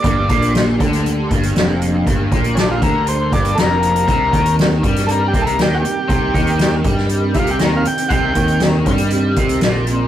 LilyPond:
<<
  \new Staff \with { instrumentName = "Transistor combo organ" } { \time 4/4 \key c \dorian \tempo 4 = 119 d''4 r2. | r4 <cis' d'>16 f'16 bes'8 c''8 d''8 <a' bes'>4~ | <a' bes'>4 r4 \tuplet 3/2 { <a' bes'>8 g'8 <a' bes'>8 g'8 <fis' g'>4~ } | <fis' g'>4~ <fis' g'>16 r4 r16 <e' f'>16 g'16 bes'16 f''16 g''8 |
<fis'' g''>4 r2. | }
  \new Staff \with { instrumentName = "String machine" } { \time 4/4 \key c \dorian << { bes'1~ | bes'1~ | bes'1~ | bes'1~ |
bes'1 | } \\ { <bes d' g'>1~ | <bes d' g'>1 | <c' ees' g'>1~ | <c' ees' g'>1~ |
<c' ees' g'>1 | } >> }
  \new Staff \with { instrumentName = "Overdriven electric guitar" } { \clef bass \time 4/4 \key c \dorian g,8 bes,4 d4 g,8 f,4 | g,8 bes,4 d4 g,8 f,4 | c8 ees4 g4 c8 ees8 r8 | c8 ees4 g4 c8 ees8 r8 |
c8 ees4 g4 c8 bes,4 | }
  \new Staff \with { instrumentName = "Fingered electric bass" } { \clef bass \time 4/4 \key c \dorian g,,8 bes,,4 d,4 g,,8 f,,4 | g,,8 bes,,4 d,4 g,,8 f,,4 | c,8 ees,4 g,4 c,8 ees,8 r8 | c,8 ees,4 g,4 c,8 ees,8 r8 |
c,8 ees,4 g,4 c,8 bes,,4 | }
  \new DrumStaff \with { instrumentName = "Drums" } \drummode { \time 4/4 <hh bd>8 <hh bd>16 hh16 <hh sn>8 <hh bd>16 <hh sn>16 hh8 <hh bd>16 hh16 <hh sn>8 hh8 | <hh bd>8 <hh bd>16 hh16 <hh sn>8 <hh bd>8 hh8 <hh bd>16 hh16 <hh sn>8 hh16 hh16 | <hh bd>8 <hh bd>16 hh16 <hh sn>8 <hh bd>16 <hh sn>16 hh8 <hh bd>16 hh16 <hh sn>8 hh8 | <hh bd>8 <hh bd>16 hh16 <hh sn>8 <hh bd>16 sn16 hh8 <hh bd>16 hh16 <hh sn>8 hh16 hh16 |
<hh bd>8 <hh bd>16 hh16 <hh sn>8 <hh bd>16 hh16 hh8 <hh bd>16 hh16 <hh sn>8 hh8 | }
>>